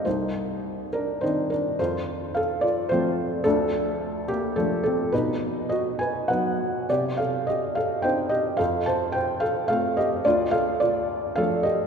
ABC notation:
X:1
M:3/4
L:1/8
Q:1/4=106
K:Cdor
V:1 name="Felt piano"
[Ec]3 [DB] [Ec] [DB] | [Fc]2 [Af] [Fd] [Fc]2 | [DA]3 [B,G] A [CA] | [^D=B]2 [^F^d] [B_a] [B^f]2 |
[Gd] [Af] [Ge] [Af] [cg] [Ge] | [Af] [ca] [cg] [Af] [Af] [Ge] | [Fd] [Af] [Fd]2 [Af] [Ge] |]
V:2 name="Felt piano"
C,,4 [E,CD]2 | F,,4 [F,A,C]2 | D,,4 [F,A,D]2 | =B,,4 [^F,=B,^D]2 |
C,4 [CDE]2 | F,,4 [A,CF]2 | D,,4 [F,A,D]2 |]